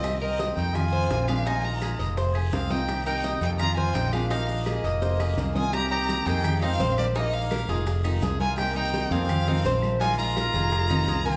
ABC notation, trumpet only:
X:1
M:4/4
L:1/8
Q:1/4=168
K:Fdor
V:1 name="Trumpet"
C C2 E F3 D | F F2 z3 C E- | E E2 E F F E D | B, D B,4- B, F |
G G2 E2 C2 B, | B, B,3 z3 F | E E2 C4 z | F F6 F |]